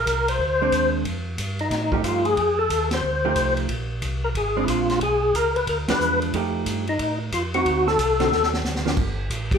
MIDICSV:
0, 0, Header, 1, 5, 480
1, 0, Start_track
1, 0, Tempo, 329852
1, 1529, Time_signature, 4, 2, 24, 8
1, 13944, End_track
2, 0, Start_track
2, 0, Title_t, "Tonewheel organ"
2, 0, Program_c, 0, 16
2, 0, Note_on_c, 0, 70, 94
2, 415, Note_off_c, 0, 70, 0
2, 419, Note_on_c, 0, 72, 93
2, 1310, Note_off_c, 0, 72, 0
2, 2337, Note_on_c, 0, 63, 79
2, 2933, Note_off_c, 0, 63, 0
2, 2978, Note_on_c, 0, 65, 77
2, 3279, Note_on_c, 0, 68, 90
2, 3290, Note_off_c, 0, 65, 0
2, 3765, Note_on_c, 0, 69, 105
2, 3771, Note_off_c, 0, 68, 0
2, 4207, Note_off_c, 0, 69, 0
2, 4275, Note_on_c, 0, 72, 85
2, 5157, Note_off_c, 0, 72, 0
2, 6174, Note_on_c, 0, 70, 81
2, 6247, Note_off_c, 0, 70, 0
2, 6358, Note_on_c, 0, 68, 76
2, 6756, Note_on_c, 0, 64, 57
2, 6762, Note_off_c, 0, 68, 0
2, 6818, Note_off_c, 0, 64, 0
2, 6836, Note_on_c, 0, 65, 71
2, 7269, Note_off_c, 0, 65, 0
2, 7314, Note_on_c, 0, 68, 85
2, 7795, Note_off_c, 0, 68, 0
2, 7797, Note_on_c, 0, 70, 97
2, 8091, Note_on_c, 0, 71, 93
2, 8101, Note_off_c, 0, 70, 0
2, 8261, Note_off_c, 0, 71, 0
2, 8280, Note_on_c, 0, 70, 79
2, 8412, Note_off_c, 0, 70, 0
2, 8585, Note_on_c, 0, 71, 95
2, 9019, Note_off_c, 0, 71, 0
2, 10028, Note_on_c, 0, 63, 80
2, 10462, Note_off_c, 0, 63, 0
2, 10675, Note_on_c, 0, 65, 81
2, 10809, Note_off_c, 0, 65, 0
2, 10979, Note_on_c, 0, 66, 108
2, 11460, Note_on_c, 0, 69, 109
2, 11465, Note_off_c, 0, 66, 0
2, 12354, Note_off_c, 0, 69, 0
2, 13883, Note_on_c, 0, 67, 84
2, 13944, Note_off_c, 0, 67, 0
2, 13944, End_track
3, 0, Start_track
3, 0, Title_t, "Hollow-body jazz guitar"
3, 0, Program_c, 1, 26
3, 897, Note_on_c, 1, 56, 62
3, 904, Note_on_c, 1, 60, 72
3, 914, Note_on_c, 1, 62, 77
3, 1504, Note_off_c, 1, 56, 0
3, 1508, Note_off_c, 1, 60, 0
3, 1513, Note_off_c, 1, 62, 0
3, 2796, Note_on_c, 1, 53, 66
3, 2809, Note_on_c, 1, 57, 57
3, 2812, Note_on_c, 1, 63, 61
3, 2817, Note_on_c, 1, 67, 68
3, 3413, Note_off_c, 1, 53, 0
3, 3419, Note_off_c, 1, 57, 0
3, 3421, Note_off_c, 1, 63, 0
3, 3423, Note_off_c, 1, 67, 0
3, 4726, Note_on_c, 1, 53, 54
3, 4729, Note_on_c, 1, 57, 58
3, 4733, Note_on_c, 1, 63, 58
3, 4738, Note_on_c, 1, 67, 59
3, 5338, Note_off_c, 1, 53, 0
3, 5339, Note_off_c, 1, 57, 0
3, 5341, Note_off_c, 1, 63, 0
3, 5344, Note_off_c, 1, 67, 0
3, 6645, Note_on_c, 1, 56, 60
3, 6650, Note_on_c, 1, 60, 60
3, 6659, Note_on_c, 1, 62, 56
3, 7258, Note_off_c, 1, 56, 0
3, 7261, Note_off_c, 1, 60, 0
3, 7265, Note_off_c, 1, 62, 0
3, 8563, Note_on_c, 1, 53, 59
3, 8583, Note_on_c, 1, 56, 67
3, 8587, Note_on_c, 1, 62, 78
3, 9179, Note_off_c, 1, 53, 0
3, 9189, Note_off_c, 1, 56, 0
3, 9190, Note_off_c, 1, 62, 0
3, 9233, Note_on_c, 1, 53, 57
3, 9240, Note_on_c, 1, 57, 67
3, 9240, Note_on_c, 1, 63, 69
3, 9257, Note_on_c, 1, 67, 70
3, 9949, Note_off_c, 1, 53, 0
3, 9953, Note_off_c, 1, 57, 0
3, 9953, Note_off_c, 1, 63, 0
3, 9961, Note_off_c, 1, 67, 0
3, 10981, Note_on_c, 1, 60, 69
3, 10990, Note_on_c, 1, 66, 74
3, 10995, Note_on_c, 1, 63, 70
3, 11589, Note_off_c, 1, 60, 0
3, 11593, Note_off_c, 1, 66, 0
3, 11596, Note_off_c, 1, 63, 0
3, 11932, Note_on_c, 1, 50, 63
3, 11935, Note_on_c, 1, 60, 67
3, 11945, Note_on_c, 1, 63, 61
3, 11947, Note_on_c, 1, 66, 73
3, 12081, Note_off_c, 1, 50, 0
3, 12083, Note_off_c, 1, 60, 0
3, 12088, Note_off_c, 1, 63, 0
3, 12089, Note_off_c, 1, 66, 0
3, 12883, Note_on_c, 1, 53, 64
3, 12895, Note_on_c, 1, 58, 72
3, 12907, Note_on_c, 1, 62, 76
3, 13037, Note_off_c, 1, 53, 0
3, 13043, Note_off_c, 1, 58, 0
3, 13049, Note_off_c, 1, 62, 0
3, 13944, End_track
4, 0, Start_track
4, 0, Title_t, "Tonewheel organ"
4, 0, Program_c, 2, 16
4, 88, Note_on_c, 2, 36, 82
4, 555, Note_off_c, 2, 36, 0
4, 568, Note_on_c, 2, 38, 65
4, 1034, Note_off_c, 2, 38, 0
4, 1047, Note_on_c, 2, 39, 83
4, 1513, Note_off_c, 2, 39, 0
4, 1524, Note_on_c, 2, 41, 80
4, 1992, Note_off_c, 2, 41, 0
4, 2004, Note_on_c, 2, 43, 88
4, 2471, Note_off_c, 2, 43, 0
4, 2481, Note_on_c, 2, 45, 79
4, 2950, Note_off_c, 2, 45, 0
4, 2961, Note_on_c, 2, 43, 74
4, 3430, Note_off_c, 2, 43, 0
4, 3446, Note_on_c, 2, 41, 78
4, 3912, Note_off_c, 2, 41, 0
4, 3921, Note_on_c, 2, 39, 84
4, 4389, Note_off_c, 2, 39, 0
4, 4395, Note_on_c, 2, 38, 71
4, 4866, Note_off_c, 2, 38, 0
4, 4879, Note_on_c, 2, 36, 86
4, 5349, Note_off_c, 2, 36, 0
4, 5364, Note_on_c, 2, 34, 81
4, 5831, Note_off_c, 2, 34, 0
4, 5840, Note_on_c, 2, 36, 88
4, 6309, Note_off_c, 2, 36, 0
4, 6326, Note_on_c, 2, 32, 68
4, 6793, Note_off_c, 2, 32, 0
4, 6805, Note_on_c, 2, 34, 82
4, 7272, Note_off_c, 2, 34, 0
4, 7283, Note_on_c, 2, 35, 80
4, 7752, Note_off_c, 2, 35, 0
4, 7766, Note_on_c, 2, 37, 88
4, 8233, Note_off_c, 2, 37, 0
4, 8248, Note_on_c, 2, 38, 68
4, 8536, Note_off_c, 2, 38, 0
4, 8555, Note_on_c, 2, 38, 36
4, 8642, Note_off_c, 2, 38, 0
4, 8728, Note_on_c, 2, 40, 89
4, 9195, Note_off_c, 2, 40, 0
4, 9207, Note_on_c, 2, 41, 78
4, 9675, Note_off_c, 2, 41, 0
4, 9692, Note_on_c, 2, 43, 78
4, 10158, Note_off_c, 2, 43, 0
4, 10171, Note_on_c, 2, 45, 70
4, 10637, Note_off_c, 2, 45, 0
4, 10654, Note_on_c, 2, 41, 79
4, 11119, Note_off_c, 2, 41, 0
4, 11136, Note_on_c, 2, 38, 81
4, 11601, Note_off_c, 2, 38, 0
4, 11617, Note_on_c, 2, 36, 91
4, 12081, Note_off_c, 2, 36, 0
4, 12093, Note_on_c, 2, 39, 74
4, 12559, Note_off_c, 2, 39, 0
4, 12574, Note_on_c, 2, 38, 77
4, 13040, Note_off_c, 2, 38, 0
4, 13051, Note_on_c, 2, 31, 83
4, 13518, Note_off_c, 2, 31, 0
4, 13532, Note_on_c, 2, 33, 91
4, 13944, Note_off_c, 2, 33, 0
4, 13944, End_track
5, 0, Start_track
5, 0, Title_t, "Drums"
5, 93, Note_on_c, 9, 36, 22
5, 101, Note_on_c, 9, 44, 57
5, 101, Note_on_c, 9, 51, 72
5, 238, Note_off_c, 9, 36, 0
5, 246, Note_off_c, 9, 44, 0
5, 246, Note_off_c, 9, 51, 0
5, 409, Note_on_c, 9, 51, 62
5, 554, Note_off_c, 9, 51, 0
5, 571, Note_on_c, 9, 36, 25
5, 716, Note_off_c, 9, 36, 0
5, 1049, Note_on_c, 9, 36, 21
5, 1049, Note_on_c, 9, 44, 49
5, 1049, Note_on_c, 9, 51, 61
5, 1195, Note_off_c, 9, 36, 0
5, 1195, Note_off_c, 9, 44, 0
5, 1195, Note_off_c, 9, 51, 0
5, 1528, Note_on_c, 9, 36, 19
5, 1529, Note_on_c, 9, 51, 56
5, 1673, Note_off_c, 9, 36, 0
5, 1675, Note_off_c, 9, 51, 0
5, 2006, Note_on_c, 9, 36, 18
5, 2009, Note_on_c, 9, 44, 59
5, 2009, Note_on_c, 9, 51, 65
5, 2151, Note_off_c, 9, 36, 0
5, 2154, Note_off_c, 9, 44, 0
5, 2154, Note_off_c, 9, 51, 0
5, 2315, Note_on_c, 9, 51, 39
5, 2460, Note_off_c, 9, 51, 0
5, 2485, Note_on_c, 9, 36, 22
5, 2485, Note_on_c, 9, 38, 36
5, 2488, Note_on_c, 9, 51, 62
5, 2630, Note_off_c, 9, 36, 0
5, 2631, Note_off_c, 9, 38, 0
5, 2633, Note_off_c, 9, 51, 0
5, 2792, Note_on_c, 9, 36, 57
5, 2938, Note_off_c, 9, 36, 0
5, 2965, Note_on_c, 9, 36, 25
5, 2967, Note_on_c, 9, 44, 60
5, 2967, Note_on_c, 9, 51, 64
5, 3110, Note_off_c, 9, 36, 0
5, 3112, Note_off_c, 9, 44, 0
5, 3112, Note_off_c, 9, 51, 0
5, 3274, Note_on_c, 9, 51, 43
5, 3420, Note_off_c, 9, 51, 0
5, 3446, Note_on_c, 9, 36, 23
5, 3449, Note_on_c, 9, 51, 52
5, 3592, Note_off_c, 9, 36, 0
5, 3595, Note_off_c, 9, 51, 0
5, 3925, Note_on_c, 9, 36, 21
5, 3932, Note_on_c, 9, 44, 49
5, 3932, Note_on_c, 9, 51, 66
5, 4070, Note_off_c, 9, 36, 0
5, 4077, Note_off_c, 9, 44, 0
5, 4077, Note_off_c, 9, 51, 0
5, 4232, Note_on_c, 9, 38, 65
5, 4234, Note_on_c, 9, 51, 58
5, 4377, Note_off_c, 9, 38, 0
5, 4380, Note_off_c, 9, 51, 0
5, 4883, Note_on_c, 9, 44, 51
5, 4883, Note_on_c, 9, 51, 64
5, 4884, Note_on_c, 9, 36, 22
5, 5029, Note_off_c, 9, 36, 0
5, 5029, Note_off_c, 9, 44, 0
5, 5029, Note_off_c, 9, 51, 0
5, 5191, Note_on_c, 9, 51, 41
5, 5337, Note_off_c, 9, 51, 0
5, 5363, Note_on_c, 9, 36, 19
5, 5366, Note_on_c, 9, 51, 59
5, 5509, Note_off_c, 9, 36, 0
5, 5511, Note_off_c, 9, 51, 0
5, 5846, Note_on_c, 9, 36, 25
5, 5848, Note_on_c, 9, 44, 52
5, 5848, Note_on_c, 9, 51, 61
5, 5992, Note_off_c, 9, 36, 0
5, 5993, Note_off_c, 9, 44, 0
5, 5993, Note_off_c, 9, 51, 0
5, 6328, Note_on_c, 9, 36, 25
5, 6331, Note_on_c, 9, 51, 56
5, 6474, Note_off_c, 9, 36, 0
5, 6477, Note_off_c, 9, 51, 0
5, 6808, Note_on_c, 9, 36, 18
5, 6809, Note_on_c, 9, 44, 49
5, 6809, Note_on_c, 9, 51, 64
5, 6954, Note_off_c, 9, 36, 0
5, 6955, Note_off_c, 9, 44, 0
5, 6955, Note_off_c, 9, 51, 0
5, 7121, Note_on_c, 9, 38, 34
5, 7124, Note_on_c, 9, 51, 40
5, 7267, Note_off_c, 9, 38, 0
5, 7270, Note_off_c, 9, 51, 0
5, 7289, Note_on_c, 9, 36, 19
5, 7290, Note_on_c, 9, 51, 56
5, 7434, Note_off_c, 9, 36, 0
5, 7436, Note_off_c, 9, 51, 0
5, 7771, Note_on_c, 9, 36, 20
5, 7781, Note_on_c, 9, 44, 65
5, 7781, Note_on_c, 9, 51, 62
5, 7917, Note_off_c, 9, 36, 0
5, 7926, Note_off_c, 9, 44, 0
5, 7926, Note_off_c, 9, 51, 0
5, 8090, Note_on_c, 9, 51, 39
5, 8235, Note_off_c, 9, 51, 0
5, 8251, Note_on_c, 9, 36, 21
5, 8253, Note_on_c, 9, 51, 60
5, 8396, Note_off_c, 9, 36, 0
5, 8398, Note_off_c, 9, 51, 0
5, 8558, Note_on_c, 9, 38, 79
5, 8561, Note_on_c, 9, 51, 70
5, 8704, Note_off_c, 9, 38, 0
5, 8707, Note_off_c, 9, 51, 0
5, 8732, Note_on_c, 9, 44, 53
5, 8878, Note_off_c, 9, 44, 0
5, 9048, Note_on_c, 9, 51, 41
5, 9194, Note_off_c, 9, 51, 0
5, 9214, Note_on_c, 9, 36, 19
5, 9220, Note_on_c, 9, 51, 55
5, 9360, Note_off_c, 9, 36, 0
5, 9365, Note_off_c, 9, 51, 0
5, 9693, Note_on_c, 9, 44, 51
5, 9693, Note_on_c, 9, 51, 64
5, 9694, Note_on_c, 9, 36, 22
5, 9839, Note_off_c, 9, 36, 0
5, 9839, Note_off_c, 9, 44, 0
5, 9839, Note_off_c, 9, 51, 0
5, 10002, Note_on_c, 9, 51, 39
5, 10148, Note_off_c, 9, 51, 0
5, 10174, Note_on_c, 9, 51, 62
5, 10175, Note_on_c, 9, 36, 21
5, 10319, Note_off_c, 9, 51, 0
5, 10320, Note_off_c, 9, 36, 0
5, 10656, Note_on_c, 9, 36, 19
5, 10656, Note_on_c, 9, 44, 55
5, 10656, Note_on_c, 9, 51, 64
5, 10801, Note_off_c, 9, 36, 0
5, 10802, Note_off_c, 9, 44, 0
5, 10802, Note_off_c, 9, 51, 0
5, 10972, Note_on_c, 9, 51, 43
5, 11117, Note_off_c, 9, 51, 0
5, 11138, Note_on_c, 9, 36, 23
5, 11145, Note_on_c, 9, 51, 54
5, 11284, Note_off_c, 9, 36, 0
5, 11290, Note_off_c, 9, 51, 0
5, 11451, Note_on_c, 9, 38, 40
5, 11596, Note_off_c, 9, 38, 0
5, 11619, Note_on_c, 9, 36, 26
5, 11624, Note_on_c, 9, 44, 55
5, 11624, Note_on_c, 9, 51, 70
5, 11764, Note_off_c, 9, 36, 0
5, 11770, Note_off_c, 9, 44, 0
5, 11770, Note_off_c, 9, 51, 0
5, 11928, Note_on_c, 9, 38, 43
5, 11931, Note_on_c, 9, 51, 42
5, 12073, Note_off_c, 9, 38, 0
5, 12076, Note_off_c, 9, 51, 0
5, 12107, Note_on_c, 9, 38, 45
5, 12253, Note_off_c, 9, 38, 0
5, 12264, Note_on_c, 9, 38, 49
5, 12410, Note_off_c, 9, 38, 0
5, 12419, Note_on_c, 9, 38, 65
5, 12565, Note_off_c, 9, 38, 0
5, 12580, Note_on_c, 9, 38, 59
5, 12583, Note_on_c, 9, 44, 51
5, 12726, Note_off_c, 9, 38, 0
5, 12729, Note_off_c, 9, 44, 0
5, 12736, Note_on_c, 9, 38, 63
5, 12882, Note_off_c, 9, 38, 0
5, 12898, Note_on_c, 9, 38, 77
5, 13043, Note_off_c, 9, 38, 0
5, 13051, Note_on_c, 9, 49, 63
5, 13054, Note_on_c, 9, 36, 65
5, 13196, Note_off_c, 9, 49, 0
5, 13200, Note_off_c, 9, 36, 0
5, 13536, Note_on_c, 9, 36, 25
5, 13540, Note_on_c, 9, 44, 59
5, 13540, Note_on_c, 9, 51, 68
5, 13681, Note_off_c, 9, 36, 0
5, 13685, Note_off_c, 9, 44, 0
5, 13685, Note_off_c, 9, 51, 0
5, 13844, Note_on_c, 9, 36, 77
5, 13851, Note_on_c, 9, 51, 68
5, 13944, Note_off_c, 9, 36, 0
5, 13944, Note_off_c, 9, 51, 0
5, 13944, End_track
0, 0, End_of_file